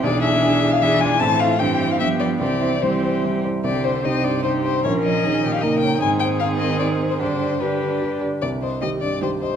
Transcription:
X:1
M:3/4
L:1/16
Q:1/4=151
K:C
V:1 name="Violin"
d2 e4- e f e2 ^g2 | a2 f2 g3 f e2 d2 | d4 c4 z4 | [K:Cm] d2 c2 e2 d2 c2 c2 |
_d2 e4- e f e2 g2 | a2 g2 f2 e2 d3 c | c4 =B6 z2 | d2 c2 e2 d2 c2 c2 |]
V:2 name="Violin"
^G8 G2 F2 | E2 F2 G4 G4 | G4 G6 z2 | [K:Cm] G4 G4 G4 |
B4 A2 G2 B4 | A12 | G4 G6 z2 | z4 G4 G4 |]
V:3 name="Grand piano"
B,,,2 [E^G]2 [DEG]2 [EG]2 [DEG]2 [EG]2 | A,,2 [EA]2 G,,2 [Ec]2 G,,2 [FB]2 | C,,2 [Ec]2 [G,Ec]2 [Ec]2 [G,Ec]2 [Ec]2 | [K:Cm] C,,2 c2 E2 G,,2 E2 c2 |
B,,,2 _d2 E2 B,,2 E2 d2 | A,,2 c2 E2 E,2 E2 c2 | G,,2 d2 G2 D,2 G2 d2 | C,,2 e2 G2 G,,2 G2 e2 |]
V:4 name="Viola"
D8 D4 | C4 C4 B,4 | C4 C6 z2 | [K:Cm] C12 |
_D8 B,4 | C12 | D4 D6 z2 | z4 C4 C4 |]
V:5 name="Cello" clef=bass
E,8 E,4 | E,4 E,4 F,4 | E,4 E,6 z2 | [K:Cm] D,4 C,8 |
F,4 E,4 _D,4 | E,12 | D,4 D,6 z2 | z4 E,4 E,4 |]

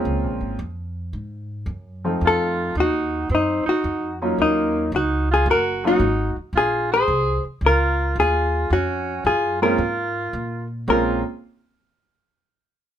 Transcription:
X:1
M:4/4
L:1/8
Q:"Swing" 1/4=111
K:Bbm
V:1 name="Hollow-body jazz guitar"
z8 | =A2 G2 E G2 z | E2 G A B G2 z | A c2 z B2 A2 |
G2 A B4 z | B z6 z |]
V:2 name="Alto saxophone"
z8 | F2 E2 C E2 z | B,2 E F G E2 z | F A2 z F2 F2 |
D2 F F4 z | F z6 z |]
V:3 name="Grand piano"
[A,B,CDF]2 z4 z [F,=A,CEF]- | [F,=A,CEF]2 z4 z [G,B,DEF]- | [G,B,DEF]2 z3 [G,B,DEF] z2 | z8 |
z3 [A,B,CDF] z4 | [A,B,CDF] z6 z |]
V:4 name="Upright bass" clef=bass
(3D,, B,,, A,,, F,,2 A,,2 G,,2 | F,,2 E,,2 G,, z F,,2 | E,,2 D,,2 G,,,2 A,,, z | B,,,2 C,, z D,,2 E,,2 |
F,,2 G,,2 A,,2 B,,2 | B,,, z6 z |]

